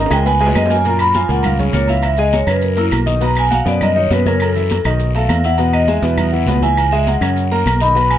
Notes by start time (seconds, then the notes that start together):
Already playing: A#5
0.06 high timbale
0.10 C#2 G#3 G#4 G5 G#5, high conga, low agogo, short guiro, claves, maracas
0.16 high timbale
0.25 B3 B4 G#5 B5, high conga, low timbale, long guiro, maracas
0.40 G#3 G#4 B4 G#5, high conga, low agogo
0.46 low timbale
0.55 F#2 D#5, high conga, low agogo, short guiro, claves, maracas
0.66 low timbale, short guiro
0.70 A#3 A#4 G#5 A#5, maracas
0.76 low timbale
0.85 A#2 A#3 A#4 A#5, high conga, low agogo, long guiro, maracas
0.99 B5, high conga, low agogo, claves, maracas
1.14 F3 F4 F5 G#5, high conga, low agogo, short guiro, maracas
1.28 C#2 A#2 A#3 A#4 F#5, high conga, short guiro, maracas
1.43 F5, high conga, low conga, low agogo, long guiro, claves, maracas
1.59 C#3 C#4 G#4 C#5, high conga, low conga, maracas
1.73 C#2 A#2 A#3 A#4 C#5, high conga, low agogo, short guiro, maracas
1.88 E3 E4 E5 F5, high conga, low agogo, short guiro, maracas
2.02 E5, high conga, low agogo, long guiro, claves, maracas
2.17 G#3 G#4 D#5 G#5, high conga, maracas
2.32 C#5, high conga, low agogo, short guiro, maracas
2.46 F#2 C#3 C#4 B4 C#5, high conga, low agogo, short guiro, claves, maracas
2.62 A#4, high conga, long guiro, maracas
2.76 A#3 E4 A#4 A#5, high conga, low agogo, maracas
2.92 B1, high conga, low agogo, short guiro, claves, maracas
3.06 D#3 D#4 D#5, high conga, short guiro, maracas
3.21 B2 B3 B4 A#5, high conga, low agogo, long guiro, maracas
3.36 G#5, high conga, low agogo, claves, maracas
3.50 F#3 F#4 F5 F#5, high conga, low agogo, short guiro, maracas
3.65 F#2 B2 B3 B4 D5, high conga, short guiro, maracas
3.81 D#5, high conga, low conga, low agogo, long guiro, claves, maracas
3.96 D#3 D#4 C#5 D#5, high conga
4.10 F#2 B2 B3 B4, high conga, low agogo, short guiro, maracas
4.26 C#3 C#4 A#4 C#5, high conga, low agogo, short guiro, maracas
4.40 A4, high conga, low agogo, long guiro, claves, maracas
4.55 E3 E4 E5, high conga, maracas
4.70 high conga, low agogo, short guiro, maracas
4.84 B1 D#3 D#4 D#5, high conga, low agogo, short guiro, claves, maracas
5.00 high conga, long guiro, maracas
5.14 A3 A4 F5 A5, high conga, low agogo, maracas
5.29 E2, high conga, low agogo, short guiro, claves, maracas
5.44 E3 E4 E5 F#5, short guiro, maracas
5.58 B2 B3 B4, high conga, low agogo, long guiro, maracas
5.73 D#5, high conga, low agogo, claves
5.88 G#3 G#4 E5 G#5, high conga, low agogo, short guiro, maracas
6.02 E2 B2 B3 B4, high conga, short guiro, maracas
6.18 high conga, low conga, low agogo, long guiro, claves, maracas
6.32 E3 E4 E5 F#5
6.46 C#2 B2 B3 B4, high conga, low timbale, low agogo, short guiro, maracas
6.62 E3 E4 E5 G#5, high conga, low agogo, short guiro, maracas
6.77 high conga, low agogo, long guiro, claves, maracas
6.92 G#3 G#4 E5 G#5, high conga, maracas
7.07 F#5, high conga, low agogo, short guiro, maracas
7.21 F#2 C#3 C#4 C#5, high conga, low agogo, short guiro, claves, maracas
7.37 high conga, long guiro, maracas
7.51 A#3 A#4 A#5, high conga, low agogo
7.66 B1, high conga, low agogo, short guiro, claves, maracas
7.80 D#3 D#4 D#5 B5, short guiro, maracas
7.95 B2 B3 B4, high conga, low agogo, long guiro, maracas
8.11 G#5, high conga, low agogo, claves